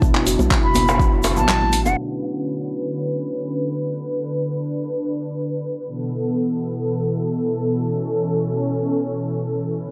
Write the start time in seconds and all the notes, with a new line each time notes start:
Already playing: B2 E4
0.02 B1 B3, kick, shaker
0.15 clap, muted conga, djembe tone
0.26 F#1 F#4, open hi-hat, shaker
0.39 B1, muted conga, high conga, low conga, shaker
0.50 F#4, kick, clap, djembe tone, shaker
0.63 F#1 B5, muted conga
0.75 B3, open hi-hat, high conga, djembe tone, djembe bass, shaker
0.88 djembe slap, shaker
0.99 F#4, kick, muted conga, djembe bass, shaker
1.12 F#1 E4, djembe tone
1.23 F#1, open hi-hat, muted conga, djembe slap, shaker
1.36 A1 F#3 A5, high conga, djembe tone, shaker
1.48 clap, muted conga, low conga, shaker
1.61 A3, high conga
1.73 open hi-hat, djembe tone, shaker
1.85 F#1 D4 F#5, djembe slap, muted conga, shaker
1.97 D3 C#4 B4
3.92 D4
5.87 B2 E3 B3 A4
7.82 C#4
9.78 D3 C#4 B4